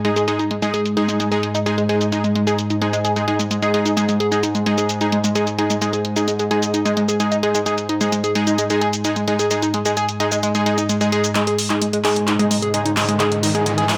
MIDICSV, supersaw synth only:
0, 0, Header, 1, 2, 480
1, 0, Start_track
1, 0, Tempo, 461538
1, 288, Time_signature, 4, 2, 24, 8
1, 14535, End_track
2, 0, Start_track
2, 0, Title_t, "Supersaw synth"
2, 0, Program_c, 0, 81
2, 48, Note_on_c, 0, 63, 68
2, 49, Note_on_c, 0, 56, 74
2, 49, Note_on_c, 0, 68, 84
2, 230, Note_off_c, 0, 56, 0
2, 230, Note_off_c, 0, 63, 0
2, 230, Note_off_c, 0, 68, 0
2, 289, Note_on_c, 0, 56, 78
2, 289, Note_on_c, 0, 63, 74
2, 289, Note_on_c, 0, 68, 88
2, 403, Note_off_c, 0, 56, 0
2, 403, Note_off_c, 0, 63, 0
2, 403, Note_off_c, 0, 68, 0
2, 648, Note_on_c, 0, 63, 72
2, 649, Note_on_c, 0, 56, 80
2, 649, Note_on_c, 0, 68, 91
2, 761, Note_off_c, 0, 56, 0
2, 761, Note_off_c, 0, 63, 0
2, 761, Note_off_c, 0, 68, 0
2, 1007, Note_on_c, 0, 63, 85
2, 1008, Note_on_c, 0, 56, 90
2, 1008, Note_on_c, 0, 68, 97
2, 1340, Note_off_c, 0, 56, 0
2, 1340, Note_off_c, 0, 63, 0
2, 1340, Note_off_c, 0, 68, 0
2, 1369, Note_on_c, 0, 56, 85
2, 1369, Note_on_c, 0, 63, 77
2, 1369, Note_on_c, 0, 68, 92
2, 1550, Note_off_c, 0, 56, 0
2, 1550, Note_off_c, 0, 63, 0
2, 1550, Note_off_c, 0, 68, 0
2, 1729, Note_on_c, 0, 56, 84
2, 1729, Note_on_c, 0, 63, 80
2, 1729, Note_on_c, 0, 68, 97
2, 1843, Note_off_c, 0, 56, 0
2, 1843, Note_off_c, 0, 63, 0
2, 1843, Note_off_c, 0, 68, 0
2, 1968, Note_on_c, 0, 56, 76
2, 1968, Note_on_c, 0, 63, 69
2, 1968, Note_on_c, 0, 68, 85
2, 2150, Note_off_c, 0, 56, 0
2, 2150, Note_off_c, 0, 63, 0
2, 2150, Note_off_c, 0, 68, 0
2, 2208, Note_on_c, 0, 56, 80
2, 2208, Note_on_c, 0, 63, 70
2, 2208, Note_on_c, 0, 68, 90
2, 2322, Note_off_c, 0, 63, 0
2, 2323, Note_off_c, 0, 56, 0
2, 2323, Note_off_c, 0, 68, 0
2, 2569, Note_on_c, 0, 68, 88
2, 2570, Note_on_c, 0, 56, 79
2, 2570, Note_on_c, 0, 63, 73
2, 2682, Note_off_c, 0, 56, 0
2, 2682, Note_off_c, 0, 63, 0
2, 2682, Note_off_c, 0, 68, 0
2, 2929, Note_on_c, 0, 56, 92
2, 2929, Note_on_c, 0, 63, 82
2, 2929, Note_on_c, 0, 68, 101
2, 3261, Note_off_c, 0, 56, 0
2, 3261, Note_off_c, 0, 63, 0
2, 3261, Note_off_c, 0, 68, 0
2, 3290, Note_on_c, 0, 56, 84
2, 3290, Note_on_c, 0, 63, 78
2, 3290, Note_on_c, 0, 68, 91
2, 3385, Note_off_c, 0, 56, 0
2, 3385, Note_off_c, 0, 63, 0
2, 3385, Note_off_c, 0, 68, 0
2, 3408, Note_on_c, 0, 56, 87
2, 3408, Note_on_c, 0, 63, 80
2, 3408, Note_on_c, 0, 68, 98
2, 3522, Note_off_c, 0, 56, 0
2, 3522, Note_off_c, 0, 63, 0
2, 3522, Note_off_c, 0, 68, 0
2, 3769, Note_on_c, 0, 56, 94
2, 3769, Note_on_c, 0, 63, 85
2, 3769, Note_on_c, 0, 68, 104
2, 3870, Note_off_c, 0, 63, 0
2, 3870, Note_off_c, 0, 68, 0
2, 3871, Note_off_c, 0, 56, 0
2, 3888, Note_on_c, 0, 56, 93
2, 3888, Note_on_c, 0, 63, 86
2, 3889, Note_on_c, 0, 68, 104
2, 4070, Note_off_c, 0, 56, 0
2, 4070, Note_off_c, 0, 63, 0
2, 4070, Note_off_c, 0, 68, 0
2, 4128, Note_on_c, 0, 56, 77
2, 4128, Note_on_c, 0, 63, 71
2, 4128, Note_on_c, 0, 68, 86
2, 4242, Note_off_c, 0, 63, 0
2, 4242, Note_off_c, 0, 68, 0
2, 4243, Note_off_c, 0, 56, 0
2, 4489, Note_on_c, 0, 56, 77
2, 4489, Note_on_c, 0, 63, 74
2, 4489, Note_on_c, 0, 68, 88
2, 4601, Note_off_c, 0, 63, 0
2, 4601, Note_off_c, 0, 68, 0
2, 4602, Note_off_c, 0, 56, 0
2, 4849, Note_on_c, 0, 56, 92
2, 4849, Note_on_c, 0, 63, 81
2, 4849, Note_on_c, 0, 68, 100
2, 5181, Note_off_c, 0, 56, 0
2, 5181, Note_off_c, 0, 63, 0
2, 5181, Note_off_c, 0, 68, 0
2, 5209, Note_on_c, 0, 56, 81
2, 5209, Note_on_c, 0, 68, 94
2, 5210, Note_on_c, 0, 63, 75
2, 5390, Note_off_c, 0, 56, 0
2, 5390, Note_off_c, 0, 63, 0
2, 5390, Note_off_c, 0, 68, 0
2, 5568, Note_on_c, 0, 56, 85
2, 5568, Note_on_c, 0, 63, 81
2, 5568, Note_on_c, 0, 68, 96
2, 5682, Note_off_c, 0, 56, 0
2, 5682, Note_off_c, 0, 63, 0
2, 5682, Note_off_c, 0, 68, 0
2, 5808, Note_on_c, 0, 56, 76
2, 5808, Note_on_c, 0, 63, 69
2, 5808, Note_on_c, 0, 68, 88
2, 5990, Note_off_c, 0, 56, 0
2, 5990, Note_off_c, 0, 63, 0
2, 5990, Note_off_c, 0, 68, 0
2, 6048, Note_on_c, 0, 56, 78
2, 6048, Note_on_c, 0, 63, 71
2, 6048, Note_on_c, 0, 68, 84
2, 6162, Note_off_c, 0, 56, 0
2, 6163, Note_off_c, 0, 63, 0
2, 6163, Note_off_c, 0, 68, 0
2, 6409, Note_on_c, 0, 63, 70
2, 6410, Note_on_c, 0, 56, 80
2, 6410, Note_on_c, 0, 68, 88
2, 6522, Note_off_c, 0, 56, 0
2, 6522, Note_off_c, 0, 63, 0
2, 6522, Note_off_c, 0, 68, 0
2, 6769, Note_on_c, 0, 56, 93
2, 6769, Note_on_c, 0, 63, 83
2, 6769, Note_on_c, 0, 68, 105
2, 7101, Note_off_c, 0, 56, 0
2, 7101, Note_off_c, 0, 63, 0
2, 7101, Note_off_c, 0, 68, 0
2, 7130, Note_on_c, 0, 56, 82
2, 7130, Note_on_c, 0, 63, 77
2, 7130, Note_on_c, 0, 68, 92
2, 7310, Note_off_c, 0, 56, 0
2, 7310, Note_off_c, 0, 63, 0
2, 7310, Note_off_c, 0, 68, 0
2, 7489, Note_on_c, 0, 56, 88
2, 7489, Note_on_c, 0, 63, 81
2, 7489, Note_on_c, 0, 68, 99
2, 7603, Note_off_c, 0, 56, 0
2, 7603, Note_off_c, 0, 63, 0
2, 7603, Note_off_c, 0, 68, 0
2, 7728, Note_on_c, 0, 56, 79
2, 7728, Note_on_c, 0, 63, 70
2, 7728, Note_on_c, 0, 68, 87
2, 7910, Note_off_c, 0, 56, 0
2, 7910, Note_off_c, 0, 63, 0
2, 7910, Note_off_c, 0, 68, 0
2, 7968, Note_on_c, 0, 56, 79
2, 7968, Note_on_c, 0, 63, 74
2, 7968, Note_on_c, 0, 68, 90
2, 8082, Note_off_c, 0, 56, 0
2, 8082, Note_off_c, 0, 63, 0
2, 8082, Note_off_c, 0, 68, 0
2, 8329, Note_on_c, 0, 63, 71
2, 8329, Note_on_c, 0, 68, 90
2, 8330, Note_on_c, 0, 56, 81
2, 8441, Note_off_c, 0, 63, 0
2, 8442, Note_off_c, 0, 56, 0
2, 8442, Note_off_c, 0, 68, 0
2, 8689, Note_on_c, 0, 56, 90
2, 8689, Note_on_c, 0, 63, 85
2, 8689, Note_on_c, 0, 68, 101
2, 9021, Note_off_c, 0, 56, 0
2, 9021, Note_off_c, 0, 63, 0
2, 9021, Note_off_c, 0, 68, 0
2, 9050, Note_on_c, 0, 56, 84
2, 9050, Note_on_c, 0, 63, 79
2, 9050, Note_on_c, 0, 68, 93
2, 9230, Note_off_c, 0, 56, 0
2, 9230, Note_off_c, 0, 63, 0
2, 9230, Note_off_c, 0, 68, 0
2, 9409, Note_on_c, 0, 56, 87
2, 9409, Note_on_c, 0, 63, 81
2, 9409, Note_on_c, 0, 68, 96
2, 9523, Note_off_c, 0, 56, 0
2, 9523, Note_off_c, 0, 63, 0
2, 9523, Note_off_c, 0, 68, 0
2, 9648, Note_on_c, 0, 56, 76
2, 9648, Note_on_c, 0, 63, 70
2, 9648, Note_on_c, 0, 68, 84
2, 9830, Note_off_c, 0, 56, 0
2, 9830, Note_off_c, 0, 63, 0
2, 9830, Note_off_c, 0, 68, 0
2, 9888, Note_on_c, 0, 56, 79
2, 9888, Note_on_c, 0, 68, 87
2, 9889, Note_on_c, 0, 63, 75
2, 10002, Note_off_c, 0, 56, 0
2, 10002, Note_off_c, 0, 68, 0
2, 10003, Note_off_c, 0, 63, 0
2, 10249, Note_on_c, 0, 56, 79
2, 10249, Note_on_c, 0, 68, 87
2, 10250, Note_on_c, 0, 63, 76
2, 10362, Note_off_c, 0, 56, 0
2, 10362, Note_off_c, 0, 63, 0
2, 10362, Note_off_c, 0, 68, 0
2, 10608, Note_on_c, 0, 56, 94
2, 10608, Note_on_c, 0, 63, 82
2, 10608, Note_on_c, 0, 68, 101
2, 10940, Note_off_c, 0, 56, 0
2, 10940, Note_off_c, 0, 63, 0
2, 10940, Note_off_c, 0, 68, 0
2, 10969, Note_on_c, 0, 56, 85
2, 10969, Note_on_c, 0, 63, 76
2, 10969, Note_on_c, 0, 68, 91
2, 11064, Note_off_c, 0, 56, 0
2, 11064, Note_off_c, 0, 63, 0
2, 11064, Note_off_c, 0, 68, 0
2, 11087, Note_on_c, 0, 63, 83
2, 11088, Note_on_c, 0, 56, 93
2, 11088, Note_on_c, 0, 68, 99
2, 11202, Note_off_c, 0, 56, 0
2, 11202, Note_off_c, 0, 63, 0
2, 11202, Note_off_c, 0, 68, 0
2, 11449, Note_on_c, 0, 56, 98
2, 11449, Note_on_c, 0, 68, 106
2, 11450, Note_on_c, 0, 63, 86
2, 11550, Note_off_c, 0, 56, 0
2, 11551, Note_off_c, 0, 63, 0
2, 11551, Note_off_c, 0, 68, 0
2, 11567, Note_on_c, 0, 56, 97
2, 11567, Note_on_c, 0, 63, 88
2, 11567, Note_on_c, 0, 68, 105
2, 11749, Note_off_c, 0, 56, 0
2, 11749, Note_off_c, 0, 63, 0
2, 11750, Note_off_c, 0, 68, 0
2, 11808, Note_on_c, 0, 56, 80
2, 11808, Note_on_c, 0, 63, 73
2, 11808, Note_on_c, 0, 68, 89
2, 11922, Note_off_c, 0, 68, 0
2, 11923, Note_off_c, 0, 56, 0
2, 11923, Note_off_c, 0, 63, 0
2, 12169, Note_on_c, 0, 56, 80
2, 12169, Note_on_c, 0, 63, 75
2, 12169, Note_on_c, 0, 68, 88
2, 12281, Note_off_c, 0, 56, 0
2, 12281, Note_off_c, 0, 63, 0
2, 12281, Note_off_c, 0, 68, 0
2, 12527, Note_on_c, 0, 56, 93
2, 12527, Note_on_c, 0, 68, 101
2, 12528, Note_on_c, 0, 63, 85
2, 12860, Note_off_c, 0, 56, 0
2, 12860, Note_off_c, 0, 63, 0
2, 12860, Note_off_c, 0, 68, 0
2, 12889, Note_on_c, 0, 56, 87
2, 12889, Note_on_c, 0, 63, 78
2, 12889, Note_on_c, 0, 68, 93
2, 13069, Note_off_c, 0, 68, 0
2, 13070, Note_off_c, 0, 56, 0
2, 13070, Note_off_c, 0, 63, 0
2, 13248, Note_on_c, 0, 68, 99
2, 13249, Note_on_c, 0, 56, 92
2, 13249, Note_on_c, 0, 63, 80
2, 13363, Note_off_c, 0, 56, 0
2, 13363, Note_off_c, 0, 63, 0
2, 13363, Note_off_c, 0, 68, 0
2, 13488, Note_on_c, 0, 68, 86
2, 13489, Note_on_c, 0, 56, 76
2, 13489, Note_on_c, 0, 63, 72
2, 13670, Note_off_c, 0, 56, 0
2, 13670, Note_off_c, 0, 63, 0
2, 13670, Note_off_c, 0, 68, 0
2, 13729, Note_on_c, 0, 56, 77
2, 13729, Note_on_c, 0, 63, 72
2, 13729, Note_on_c, 0, 68, 86
2, 13843, Note_off_c, 0, 56, 0
2, 13843, Note_off_c, 0, 63, 0
2, 13843, Note_off_c, 0, 68, 0
2, 14089, Note_on_c, 0, 56, 78
2, 14089, Note_on_c, 0, 63, 73
2, 14089, Note_on_c, 0, 68, 93
2, 14201, Note_off_c, 0, 56, 0
2, 14201, Note_off_c, 0, 63, 0
2, 14201, Note_off_c, 0, 68, 0
2, 14447, Note_on_c, 0, 56, 94
2, 14447, Note_on_c, 0, 68, 105
2, 14448, Note_on_c, 0, 63, 87
2, 14535, Note_off_c, 0, 56, 0
2, 14535, Note_off_c, 0, 63, 0
2, 14535, Note_off_c, 0, 68, 0
2, 14535, End_track
0, 0, End_of_file